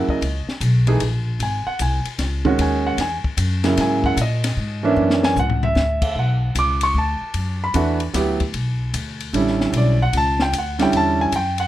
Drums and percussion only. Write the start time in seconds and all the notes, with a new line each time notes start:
0.09 kick
0.22 ride
0.49 snare
0.61 hi-hat pedal, ride
0.87 ride
1.00 ride
1.40 ride
1.79 hi-hat pedal, ride
2.05 ride
2.19 snare, ride
2.45 kick
2.59 ride
2.98 snare, ride
3.24 kick
3.38 hi-hat pedal, ride
3.64 snare, ride
3.77 snare, ride
4.04 kick
4.17 hi-hat pedal, ride
4.44 snare, ride
5.10 snare
5.23 snare
5.36 floor tom, hi-hat pedal
5.50 floor tom
5.63 floor tom
5.76 snare
6.02 kick, crash
6.55 hi-hat pedal, ride
6.81 ride
7.34 ride
7.74 hi-hat pedal, ride
8.00 ride
8.14 snare, hi-hat pedal, ride
8.40 kick, ride
8.54 ride
8.94 hi-hat pedal, ride
9.20 ride
9.34 ride
9.48 snare
9.61 snare
9.73 ride
10.13 ride
10.39 snare
10.53 hi-hat pedal, ride
10.79 snare, ride
10.93 ride
11.32 hi-hat pedal, ride
11.58 ride